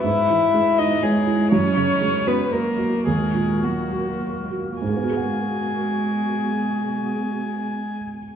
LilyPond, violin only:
\new Staff \with { instrumentName = "Violin" } { \time 3/4 \key gis \minor \tempo 4 = 103 e''4. dis''8 gis'4 | cis''4. b'8 ais'4 | gis'4 fis'4. r8 | gis''2.~ |
gis''2. | }